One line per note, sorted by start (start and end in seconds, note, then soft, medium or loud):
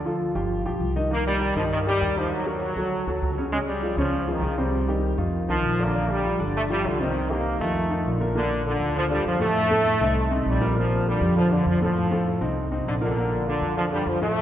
0.00 0.30 D2 medium
0.06 0.30 F3 medium
0.06 0.31 F4 medium
0.06 0.31 A4 medium
0.35 0.63 G1 medium
0.35 0.60 F3 medium
0.35 0.60 F4 medium
0.35 0.61 G4 medium
0.65 0.80 B1 medium
0.65 0.90 F3 medium
0.65 0.91 F4 medium
0.65 0.91 G4 medium
0.80 1.50 C2 medium
0.96 1.08 D#3 medium
0.96 1.08 D#4 medium
0.96 1.09 D#5 medium
1.11 1.35 D#3 medium
1.11 1.26 A#3 loud
1.11 1.36 D#4 medium
1.11 1.36 D#5 medium
1.27 1.55 G3 loud
1.41 1.54 G3 medium
1.41 1.54 G4 medium
1.41 1.54 A#4 medium
1.56 1.98 G2 medium
1.56 1.81 D#3 medium
1.56 1.64 F3 medium
1.56 1.81 D#4 medium
1.56 1.81 D#5 medium
1.73 1.79 D#3 loud
1.87 1.99 G3 medium
1.87 2.15 G3 loud
1.87 1.99 G4 medium
1.87 1.99 A#4 medium
2.01 2.71 D#2 medium
2.01 2.14 G3 medium
2.01 2.14 G4 medium
2.01 2.14 A#4 medium
2.16 2.41 D#3 medium
2.16 2.32 F3 medium
2.16 2.41 D#4 medium
2.16 2.42 D#5 medium
2.33 2.47 F#3 loud
2.46 2.71 F#3 medium
2.46 3.34 F#3 loud
2.46 2.71 F#4 medium
2.46 2.72 A#4 medium
2.76 3.05 D2 medium
2.76 3.02 F#3 medium
2.76 3.02 F#4 medium
2.76 3.02 A4 medium
3.07 3.21 D2 medium
3.07 3.32 F#3 medium
3.07 3.32 F#4 medium
3.07 3.32 A4 medium
3.22 3.92 C#2 medium
3.38 3.50 C#3 medium
3.38 3.50 C#4 medium
3.38 3.50 C#5 medium
3.52 3.77 C#3 medium
3.52 3.59 G#3 medium
3.52 3.77 C#4 medium
3.52 3.77 C#5 medium
3.68 3.96 G3 medium
3.83 3.95 F3 medium
3.83 3.95 F4 medium
3.83 3.95 G#4 medium
3.97 4.39 C#2 loud
3.97 4.23 C#3 medium
3.97 4.31 F3 loud
3.97 4.23 C#4 medium
3.97 4.23 C#5 medium
4.28 4.40 F3 medium
4.28 4.40 F4 medium
4.28 4.40 G#4 medium
4.34 4.58 D#3 medium
4.42 5.12 C2 medium
4.42 4.55 F3 medium
4.42 4.55 F4 medium
4.42 4.55 G#4 medium
4.58 4.83 C3 medium
4.58 5.14 G3 medium
4.58 4.83 C4 medium
4.58 4.83 C5 medium
4.88 5.13 D#3 medium
4.88 5.13 D#4 medium
4.88 5.13 G4 medium
5.18 5.46 F2 medium
5.18 5.43 D#3 medium
5.18 5.43 D#4 medium
5.18 5.43 F4 medium
5.48 5.62 C2 medium
5.48 5.73 D#3 medium
5.48 5.82 F3 loud
5.48 5.73 D#4 medium
5.48 5.74 F4 medium
5.63 6.33 A#1 medium
5.78 5.91 D3 medium
5.78 5.91 D4 medium
5.78 5.91 D5 medium
5.85 6.09 A#3 loud
5.94 6.18 D3 medium
5.94 6.18 D4 medium
5.94 6.19 D5 medium
6.11 6.40 G3 loud
6.24 6.36 F3 medium
6.24 6.36 F4 medium
6.24 6.37 G4 medium
6.39 6.81 G1 medium
6.39 6.64 D3 medium
6.39 6.64 D4 medium
6.39 6.64 D5 medium
6.56 6.62 A3 loud
6.70 6.82 F3 medium
6.70 6.85 G3 loud
6.70 6.82 F4 medium
6.70 6.82 G4 medium
6.84 7.54 C2 medium
6.84 7.01 D3 medium
6.84 6.97 F3 medium
6.84 6.97 F4 medium
6.84 6.98 G4 medium
7.00 7.25 C3 medium
7.00 7.29 D#3 medium
7.00 7.25 C4 medium
7.00 7.25 C5 medium
7.30 7.55 D#3 medium
7.30 7.61 A#3 loud
7.30 7.55 D#4 medium
7.30 7.55 G4 medium
7.60 8.02 F2 loud
7.60 7.85 D#3 medium
7.60 8.17 A3 loud
7.60 7.85 D#4 medium
7.60 7.85 F4 medium
7.90 8.15 D#3 medium
7.90 8.15 D#4 medium
7.90 8.15 F4 medium
8.05 8.75 A#1 medium
8.05 8.34 D3 medium
8.21 8.33 A#2 medium
8.21 8.33 A#3 medium
8.21 8.33 A#4 medium
8.35 8.60 A#2 medium
8.35 8.64 D3 loud
8.35 8.60 A#3 medium
8.35 8.60 A#4 medium
8.65 8.90 D3 medium
8.65 8.95 D3 medium
8.65 8.90 D4 medium
8.65 8.90 F4 medium
8.80 9.22 D2 loud
8.95 9.08 D3 medium
8.95 9.04 F3 loud
8.95 9.08 D4 medium
8.95 9.08 F4 medium
9.10 9.35 D3 medium
9.10 9.26 G3 loud
9.10 9.35 D4 medium
9.10 9.35 F4 medium
9.25 9.95 F2 medium
9.25 9.41 F3 loud
9.40 9.65 A2 medium
9.40 9.65 A3 medium
9.40 10.28 A3 loud
9.40 9.65 A4 loud
9.71 9.95 A2 loud
9.71 9.96 A3 loud
9.71 9.96 A4 loud
10.00 10.43 C2 loud
10.00 10.26 C3 medium
10.00 10.26 C4 medium
10.00 10.26 D#4 medium
10.31 10.56 C3 medium
10.31 10.56 C4 medium
10.31 10.56 D#4 medium
10.46 11.16 A#1 medium
10.46 10.76 G3 loud
10.61 10.73 A#2 medium
10.61 10.74 A#3 medium
10.61 10.74 A#4 medium
10.76 11.01 A#2 medium
10.76 11.06 F3 loud
10.76 11.01 A#3 medium
10.76 11.01 A#4 medium
11.06 11.31 D3 medium
11.06 11.36 G3 medium
11.06 11.31 D4 medium
11.06 11.31 F4 medium
11.21 11.63 F2 loud
11.36 11.49 D3 medium
11.36 11.51 F3 loud
11.36 11.49 D4 medium
11.36 11.49 F4 medium
11.51 11.76 D3 medium
11.51 11.67 D3 medium
11.51 11.76 D4 medium
11.51 11.76 F4 medium
11.66 12.36 F2 medium
11.66 11.82 F3 medium
11.81 12.06 A2 medium
11.81 12.42 F3 medium
11.81 12.06 A3 medium
11.81 12.07 A4 medium
12.11 12.36 A2 medium
12.11 12.36 A3 loud
12.11 12.36 A4 loud
12.41 12.83 C2 medium
12.41 12.66 C3 medium
12.41 12.66 C4 medium
12.41 12.66 D#4 medium
12.71 12.96 C3 medium
12.71 12.96 C4 medium
12.71 12.96 D#4 medium
12.86 13.56 A#1 medium
12.86 12.95 D3 medium
13.01 13.14 A#2 medium
13.01 13.44 D3 medium
13.01 13.14 A#3 medium
13.01 13.14 A#4 medium
13.16 13.41 A#2 medium
13.16 13.41 A#3 medium
13.16 13.42 A#4 medium
13.46 13.71 D3 medium
13.46 13.75 D3 medium
13.46 13.71 D4 medium
13.46 13.72 F4 medium
13.61 14.03 F2 loud
13.76 13.89 D3 medium
13.76 13.84 F3 loud
13.76 13.89 D4 medium
13.76 13.89 F4 medium
13.92 14.17 D3 medium
13.92 14.07 G3 loud
13.92 14.17 D4 medium
13.92 14.17 F4 medium
14.06 14.42 F2 medium
14.06 14.23 F3 loud
14.21 14.42 A2 medium
14.21 14.42 A3 medium
14.21 14.42 A3 loud
14.21 14.42 A4 medium